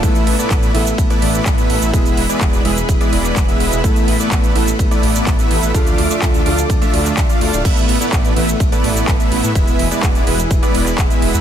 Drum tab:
CC |----------------|----------------|----------------|----------------|
RD |x-x-x-x-x-x-x-x-|x-x-x-x-x-x-x-x-|x-x-x-x-x-x-x-x-|x-x-x-x-x-x-x-x-|
HH |xxoxxxoxxxoxxxox|xxoxxxoxxxoxxxox|xxoxxxoxxxoxxxox|xxoxxxoxxxoxxxox|
SH |xx-xxx-xxx-xxx-x|xx-xxx-xxx-xxx-x|xx-xxx-xxx-xxx-x|xx-xxx-xxx-xxx-x|
CP |----x-------x---|----x------xx---|----x-------x---|----x------xx---|
BD |o---o---o---o---|o---o---o---o---|o---o---o---o---|o---o---o---o---|

CC |x---------------|----------------|
RD |x-x-x-x-x-x-x-x-|x-x-x-x-x-x-x-x-|
HH |xxoxxxoxxxoxxxox|xxoxxxoxxxoxxxox|
SH |xx-xxx-xxx-xxx-x|xx-xxx-xxx-xxx-x|
CP |----x-------x---|----x------xx---|
BD |o---o---o---o---|o---o---o---o---|